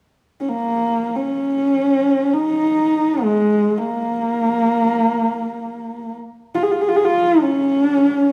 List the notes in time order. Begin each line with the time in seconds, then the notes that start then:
0.41 C#4
0.49 A#3
1.17 C#4
2.33 D#4
3.23 G#3
3.78 A#3
6.55 F4
6.63 G#4
6.72 F4
6.81 G#4
6.89 F4
6.96 G#4
7.05 F4
7.41 C#4
7.84 D4
7.96 C#4
8.08 D4
8.20 C#4